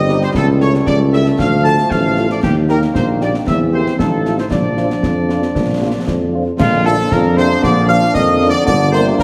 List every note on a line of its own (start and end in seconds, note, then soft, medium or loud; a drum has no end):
0.00 0.26 G1 medium
0.00 1.39 G3 medium
0.00 0.31 C4 medium
0.00 0.19 D#5 medium
0.08 0.17 G3 medium
0.08 0.17 D#4 medium
0.08 0.17 G4 medium
0.08 snare medium
0.21 0.29 C5 medium
0.21 snare medium
0.34 0.78 C#2 medium
0.34 2.43 A3 medium
0.34 0.47 A4 medium
0.34 concert bass drum medium
0.34 snare medium
0.60 0.70 G3 medium
0.60 0.70 E4 medium
0.60 0.70 A4 medium
0.60 0.73 C#5 medium
0.60 snare soft
0.74 snare medium
0.86 1.30 C#2 medium
0.86 0.98 D5 medium
0.86 concert bass drum medium
0.86 snare medium
1.12 1.22 G3 medium
1.12 1.22 E4 medium
1.12 1.22 A4 medium
1.12 1.25 E5 medium
1.12 snare soft
1.26 snare soft
1.39 1.82 D2 medium
1.39 2.39 F3 medium
1.39 1.63 F5 medium
1.39 concert bass drum medium
1.39 snare medium
1.64 1.74 F3 medium
1.64 1.74 F4 medium
1.64 1.74 A4 medium
1.64 1.88 A5 medium
1.78 snare medium
1.90 2.30 A1 medium
1.90 2.30 F5 medium
1.90 concert bass drum medium
1.90 snare medium
2.17 2.26 F3 medium
2.17 2.27 F4 medium
2.17 2.26 A4 medium
2.17 snare soft
2.30 2.37 D5 medium
2.30 snare soft
2.43 2.86 D#2 medium
2.43 3.43 D#3 medium
2.43 3.43 A#3 medium
2.43 2.55 G4 medium
2.43 concert bass drum medium
2.43 snare medium
2.43 crash soft
2.68 2.78 A#3 medium
2.68 2.78 D#4 medium
2.68 2.78 G4 medium
2.68 2.81 A#4 medium
2.68 snare soft
2.82 snare soft
2.94 3.38 A#1 medium
2.94 3.06 C5 medium
2.94 concert bass drum medium
2.94 snare medium
3.20 3.30 A#3 medium
3.20 3.30 D#4 medium
3.20 3.30 G4 medium
3.20 3.33 D5 medium
3.20 snare soft
3.34 snare medium
3.47 3.90 E2 medium
3.47 3.99 E3 medium
3.47 3.72 C4 medium
3.47 3.59 E5 medium
3.47 concert bass drum medium
3.47 snare medium
3.73 3.82 A#3 soft
3.73 3.82 C4 soft
3.73 3.97 C4 soft
3.73 3.82 G4 soft
3.73 3.97 C5 medium
3.86 snare soft
3.98 4.43 A1 soft
3.98 4.48 F3 soft
3.98 4.48 D#4 soft
3.98 4.35 A4 medium
3.98 concert bass drum medium
3.98 snare medium
4.25 4.35 A3 soft
4.25 4.35 D#4 soft
4.25 4.35 F4 soft
4.25 snare soft
4.38 4.45 C5 medium
4.38 snare soft
4.51 4.95 A#1 medium
4.51 6.29 F3 medium
4.51 6.33 D4 medium
4.51 6.29 D5 medium
4.51 concert bass drum medium
4.51 snare medium
4.77 4.87 F3 soft
4.77 4.87 D4 soft
4.77 4.87 F4 soft
4.77 snare soft
4.90 snare soft
5.03 5.47 F2 medium
5.03 concert bass drum medium
5.03 snare medium
5.29 5.39 F3 soft
5.29 5.39 D4 soft
5.29 5.38 F4 soft
5.29 snare soft
5.42 snare soft
5.55 5.99 A#1 medium
5.55 concert bass drum medium
5.55 snare medium
5.81 5.91 F3 soft
5.81 5.91 D4 soft
5.81 5.91 F4 soft
6.07 6.51 F2 medium
6.07 concert bass drum medium
6.07 snare medium
6.33 6.43 F3 soft
6.33 6.43 D4 soft
6.33 6.43 F4 soft
6.58 7.03 A#1 medium
6.58 6.83 F2 medium
6.58 8.63 F3 medium
6.58 8.64 D4 medium
6.58 6.83 F4 medium
6.58 6.87 F5 loud
6.58 concert bass drum medium
6.58 snare medium
6.58 crash medium
6.85 6.97 A2 medium
6.85 6.95 A#3 medium
6.85 6.95 D4 medium
6.85 6.95 F4 medium
6.85 7.09 A4 loud
6.85 7.11 A5 medium
6.85 snare medium
6.99 snare medium
7.11 7.55 F2 medium
7.11 7.23 A#2 medium
7.11 7.38 A#4 medium
7.11 7.39 A#5 medium
7.11 concert bass drum medium
7.11 snare medium
7.37 7.49 C3 medium
7.37 7.47 A#3 medium
7.37 7.47 D4 medium
7.37 7.47 F4 medium
7.37 7.61 C5 loud
7.37 7.63 C6 medium
7.37 snare medium
7.50 snare medium
7.62 8.07 A#1 medium
7.62 7.74 D3 medium
7.62 7.88 D5 medium
7.62 7.87 D6 loud
7.62 concert bass drum medium
7.62 snare medium
7.88 8.15 F3 medium
7.88 7.99 A#3 medium
7.88 7.98 D4 medium
7.88 7.98 F4 medium
7.88 8.13 F5 loud
7.88 7.95 F6 medium
8.02 snare medium
8.14 8.55 F2 medium
8.14 8.51 D#3 medium
8.14 8.47 D#5 loud
8.14 8.48 D#6 loud
8.14 concert bass drum medium
8.14 snare medium
8.41 8.51 A#3 medium
8.41 8.51 D4 medium
8.41 8.51 F4 medium
8.41 snare medium
8.49 8.65 D3 medium
8.49 8.65 D5 loud
8.49 8.56 D6 medium
8.54 snare medium
8.66 9.11 G1 loud
8.66 8.94 D3 loud
8.66 9.23 A#3 medium
8.66 9.23 D4 medium
8.66 8.91 D5 loud
8.66 8.74 D6 loud
8.66 concert bass drum medium
8.66 snare medium
8.66 crash soft
8.92 9.17 C3 loud
8.92 9.02 A#3 medium
8.92 9.02 D4 medium
8.92 9.02 A#4 medium
8.92 9.04 C5 loud
8.92 9.00 C6 loud
8.92 snare soft
9.06 snare medium
9.18 9.23 D2 medium
9.18 9.23 A#2 medium
9.18 9.23 A#4 loud
9.18 concert bass drum medium
9.18 snare medium